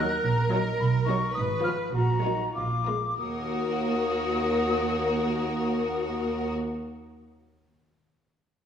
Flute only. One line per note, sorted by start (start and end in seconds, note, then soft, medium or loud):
0.00 0.24 F#6 medium
0.25 0.51 A#5 medium
0.52 0.58 A#5 medium
0.79 0.86 B5 medium
1.06 1.34 C#6 medium
1.34 1.41 D#6 medium
1.63 1.70 F6 medium
1.94 2.53 A#5 medium
2.54 3.17 D6 medium
3.18 6.53 D#6 medium